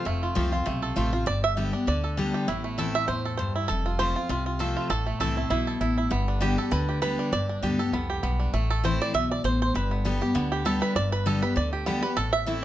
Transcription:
Already playing: five-string banjo F4 C5
0.05 upright bass F1, steel-string acoustic guitar F2, five-string banjo A3
0.23 five-string banjo F4
0.35 upright bass C2, steel-string acoustic guitar F3 A3 C4 F4, five-string banjo F4
0.52 steel-string acoustic guitar C4 F4, five-string banjo F4
0.66 upright bass B1, steel-string acoustic guitar C3, five-string banjo A3
0.82 five-string banjo A4
0.96 upright bass A1, steel-string acoustic guitar F3 A3 C4 F4, five-string banjo F4
1.12 steel-string acoustic guitar C4 F4, five-string banjo F4
1.26 upright bass G1, steel-string acoustic guitar G2, five-string banjo D5
1.44 five-string banjo E5
1.57 steel-string acoustic guitar D3 G3 B3 G4, five-string banjo G4
1.73 steel-string acoustic guitar B3 G4, five-string banjo D4
1.87 upright bass D2, steel-string acoustic guitar D3, five-string banjo D5
2.04 five-string banjo A4
2.17 steel-string acoustic guitar D3 G3 B3 G4, five-string banjo D4
2.34 five-string banjo G4
2.48 upright bass A1, steel-string acoustic guitar A2, five-string banjo E4
2.64 five-string banjo A3
2.78 steel-string acoustic guitar E3 A3 C4 E4, five-string banjo A4
2.94 steel-string acoustic guitar C4 E4, five-string banjo E5
3.08 upright bass E2, steel-string acoustic guitar A2, five-string banjo C5
3.25 five-string banjo A4
3.37 steel-string acoustic guitar G2, five-string banjo C5
3.56 five-string banjo E4
3.68 upright bass F1, steel-string acoustic guitar F2, five-string banjo A4
3.86 five-string banjo F4
3.99 steel-string acoustic guitar F3 A3 C4 F4, five-string banjo C5
4.16 steel-string acoustic guitar C4 F4, five-string banjo F4
4.29 upright bass C2, steel-string acoustic guitar C3, five-string banjo F4
4.46 five-string banjo F4
4.59 steel-string acoustic guitar F3 A3 C4 F4, five-string banjo A4
4.77 five-string banjo F4
4.90 upright bass A1, steel-string acoustic guitar A2, five-string banjo A4
5.06 five-string banjo A3
5.20 upright bass C2, steel-string acoustic guitar E3 A3 C4 E4, five-string banjo A4
5.36 steel-string acoustic guitar C4 E4, five-string banjo E4
5.50 upright bass B1, steel-string acoustic guitar B2, five-string banjo E4
5.67 five-string banjo A4
5.81 upright bass A1, steel-string acoustic guitar A2, five-string banjo E4
5.98 five-string banjo E4
6.10 upright bass G1, steel-string acoustic guitar G2, five-string banjo B3
6.28 five-string banjo D4
6.40 steel-string acoustic guitar D3 G3 B3 G4, five-string banjo G4
6.57 steel-string acoustic guitar B3 G4, five-string banjo A4
6.71 upright bass D2, steel-string acoustic guitar D3, five-string banjo B4
6.89 five-string banjo G4
7.02 steel-string acoustic guitar D3 G3 B3 G4, five-string banjo B4
7.19 five-string banjo D4
7.32 upright bass G1, steel-string acoustic guitar G2, five-string banjo D5
7.49 five-string banjo D4
7.62 upright bass D2, steel-string acoustic guitar D3 G3 B3 G4, five-string banjo G4
7.79 steel-string acoustic guitar B3 G4, five-string banjo A4
7.92 upright bass C2, steel-string acoustic guitar F2, five-string banjo B3
8.10 five-string banjo G4
8.23 upright bass B1, steel-string acoustic guitar G2, five-string banjo B3
8.40 five-string banjo D4
8.53 upright bass A1, steel-string acoustic guitar A2, five-string banjo A3
8.70 five-string banjo A4
8.84 steel-string acoustic guitar E3 A3 C4 E4, five-string banjo C5
9.02 five-string banjo D5
9.14 upright bass B1, steel-string acoustic guitar B2, five-string banjo E5
9.31 five-string banjo D5
9.44 upright bass A1, steel-string acoustic guitar A2, five-string banjo C5
9.62 five-string banjo C5
9.74 upright bass G1, steel-string acoustic guitar G2, five-string banjo B4
9.91 five-string banjo B3
10.05 steel-string acoustic guitar D3 G3 B3 G4, five-string banjo G3
10.21 steel-string acoustic guitar B3 G4, five-string banjo G4
10.35 upright bass D2, steel-string acoustic guitar D3, five-string banjo B3
10.52 five-string banjo G4
10.65 steel-string acoustic guitar D3 G3 B3 G4, five-string banjo A4
10.82 five-string banjo B4
10.96 upright bass G1, steel-string acoustic guitar G2, five-string banjo D5
11.12 five-string banjo B4
11.26 steel-string acoustic guitar D3 G3 B3 G4, five-string banjo A4
11.42 steel-string acoustic guitar B3 G4, five-string banjo B4
11.56 upright bass D2, steel-string acoustic guitar D3, five-string banjo D5
11.73 five-string banjo G4
11.86 steel-string acoustic guitar D3 G3 B3 G4, five-string banjo B3
12.02 steel-string acoustic guitar B3 G4, five-string banjo B4
12.17 upright bass A1, steel-string acoustic guitar A2, five-string banjo A4
12.33 five-string banjo E5
12.46 steel-string acoustic guitar E3 A3 C4 E4, five-string banjo E4

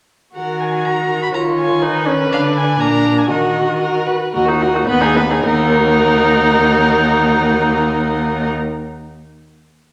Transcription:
0.36 cello D#3, viola F#4, violin A#4 F#5
0.60 violin G#5
0.85 violin A#4 A#5
1.23 violin B5
1.33 cello D#3, viola F4, violin C#5 A#5
1.59 violin G#5
1.82 viola D#4, violin B4
2.07 viola C#4
2.31 cello D3, viola D4, violin F5
2.57 violin G#5
2.79 cello A#2, viola D4, violin A#4 A#5
3.19 violin G#5
3.29 cello D#3, viola F#4, violin A#4 D#5
3.80 violin A#4
4.06 violin B4
4.33 cello D#2, viola F#4, violin A#4 D#5
4.46 viola D#4, violin F#4 F#5
4.60 viola F#4, violin A#4 D#5
4.74 viola D#4, violin F#4 F#5
4.87 cello D#2, viola B3, violin B4 B5
5.01 viola D#4, violin G#4 G#5
5.15 viola B3, violin B4 B5
5.30 viola D#4, violin G#4 G#5
5.44 cello D#2, viola D#4, violin A#4 F#5

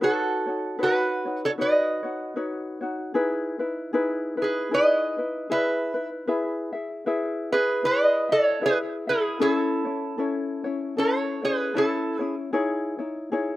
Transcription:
0.01 ukulele D#4 F#4 B4 C#5, resonator guitar played with a steel bar F#4 A4
0.47 ukulele D#4 F#4 C#5
0.79 ukulele D#4 F#4 B4 C#5
0.83 resonator guitar played with a steel bar F#4 B4
1.25 ukulele D#4 F#4 C#5
1.45 resonator guitar played with a steel bar A4 C#5
1.58 ukulele D#4 F#4 B4 C#5, resonator guitar played with a steel bar B4
1.62 resonator guitar played with a steel bar D#5
2.03 ukulele D#4 F#4 C#5
2.36 ukulele D#4 F#4 B4 C#5
2.81 ukulele D#4 F#4 C#5
3.14 ukulele D#4 E4 G#4 B4
3.59 ukulele D#4 E4 B4
3.93 ukulele D#4 E4 G#4 B4
4.37 ukulele D#4 E4 B4
4.42 resonator guitar played with a steel bar G#4 B4
4.71 ukulele D#4 E4 G#4 B4, resonator guitar played with a steel bar B4 D#5
5.18 ukulele D#4 E4 B4
5.50 ukulele E4 G#4 B4, resonator guitar played with a steel bar B4 E5
5.94 ukulele D#4 E4 B4
6.27 ukulele E4 G#4 B4 E5
6.73 ukulele E4 G#4 E5
7.06 ukulele E4 G#4 B4 E5
7.52 ukulele E4 G#4 E5, resonator guitar played with a steel bar G#4 B4
7.83 ukulele E4 G#4 B4, resonator guitar played with a steel bar B4 D#5
8.29 ukulele E4 E5, resonator guitar played with a steel bar A4 C#5
8.61 ukulele E4 G#4 B4 E5
8.66 resonator guitar played with a steel bar G#4 B4
9.07 ukulele E4 G#4 E5, resonator guitar played with a steel bar E4 G#4
9.40 ukulele C#4 E4 A4 C#5, resonator guitar played with a steel bar E4 G#4
9.52 resonator guitar played with a steel bar A4
9.85 ukulele C#4 E4 C#5
10.18 ukulele C#4 E4 A4 C#5
10.64 ukulele C#4 E4 C#5
10.97 ukulele C#4 E4 A4 C#5, resonator guitar played with a steel bar A4 C#5
11.42 ukulele C#4 E4 C#5, resonator guitar played with a steel bar G#4 B4
11.74 ukulele C#4 E4 A4 C#5, resonator guitar played with a steel bar E4 A4
12.19 ukulele C#4 E4 C#5, resonator guitar played with a steel bar G#4
12.53 ukulele D#4 E4 G#4 C#5
12.99 ukulele D#4 E4 C#5
13.32 ukulele D#4 E4 G#4 C#5

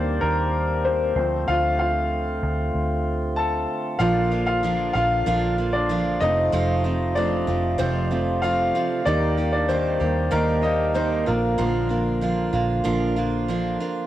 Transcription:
Already playing: fingered electric bass D#2, grand piano D#3 G3 A#3 C4 D4 A#4 C5 D5, tonewheel organ D#3 G3 A#3 G4
0.21 fingered electric bass D#2, grand piano A#3 A#4
0.85 grand piano C4 C5
1.16 fingered electric bass D2, tonewheel organ D3 A3 C4 F4, grand piano F3 A3 C4
1.48 fingered electric bass D2, grand piano F4 F5
1.79 grand piano F4 F5
2.43 fingered electric bass D2
2.74 fingered electric bass D2
3.36 grand piano A4 A5
3.99 fingered electric bass A#1, steel-string acoustic guitar A#2 F3 A#3 D4 F4, grand piano F3 A#3 D4 F4 F5, tonewheel organ F3 A#3
4.31 steel-string acoustic guitar A#3 D4 F4
4.46 grand piano F4 F5
4.63 steel-string acoustic guitar F3 A#3 D4 F4
4.93 fingered electric bass A#1, steel-string acoustic guitar A#3 D4 F4, grand piano F4 F5
5.26 fingered electric bass A#1, steel-string acoustic guitar A#2 F3 A#3 D4 F4
5.58 steel-string acoustic guitar A#3 D4 F4
5.73 grand piano D4 D5
5.89 steel-string acoustic guitar F3 A#3 D4 F4
6.20 fingered electric bass F1, tonewheel organ C3 A3, grand piano F3 A3 C4 D#4 D#5, steel-string acoustic guitar F3 A3 C4 F4
6.52 fingered electric bass F1, steel-string acoustic guitar F2 C3 F3 A3 C4 F4
6.84 steel-string acoustic guitar F3 A3 C4 F4
7.15 steel-string acoustic guitar F3 A3 C4 F4, grand piano F3 A3 C4 D4 D5
7.47 fingered electric bass F1, steel-string acoustic guitar F3 A3 C4 F4
7.78 fingered electric bass F1, steel-string acoustic guitar F2 C3 F3 A3 C4 F4, grand piano C4 C5
8.11 steel-string acoustic guitar F3 A3 C4 F4
8.42 steel-string acoustic guitar F3 A3 C4 F4, grand piano F4 F5
8.75 steel-string acoustic guitar F3 A3 C4 F4
9.05 fingered electric bass D#2, grand piano D#3 G3 A#3 D#4 D5, steel-string acoustic guitar D#3 A#3 D#4 G4, tonewheel organ D#3 G3 A#3 G4
9.37 steel-string acoustic guitar A#3 D#4 G4
9.52 grand piano D4 D5
9.68 steel-string acoustic guitar D#3 A#3 D#4 G4, grand piano C4 C5
10.00 fingered electric bass D#2, grand piano D#3 G3 A#3, steel-string acoustic guitar A#3 D#4 G4
10.31 fingered electric bass D#2, steel-string acoustic guitar D#3 A#3 D#4 G4, grand piano A#3 A#4
10.62 steel-string acoustic guitar A#3 D#4 G4, grand piano D#4 D#5
10.94 steel-string acoustic guitar D#3 A#3 D#4 G4, grand piano C4 C5
11.26 fingered electric bass A#1, tonewheel organ D3 F3 F4, steel-string acoustic guitar A#3 D4 F4, grand piano A#3 A#4
11.58 fingered electric bass A#1, steel-string acoustic guitar A#2 F3 A#3 D4 F4, grand piano D3 F3 A#3
11.89 steel-string acoustic guitar A#3 D4 F4
12.21 steel-string acoustic guitar F3 A#3 D4 F4
12.53 fingered electric bass A#1, steel-string acoustic guitar A#3 D4 F4
12.84 fingered electric bass A#1, steel-string acoustic guitar A#2 F3 A#3 D4 F4, grand piano D3 F3 A#3
13.16 steel-string acoustic guitar A#3 D4 F4
13.48 steel-string acoustic guitar F3 A#3 D4 F4
13.80 steel-string acoustic guitar A#3 D4 F4

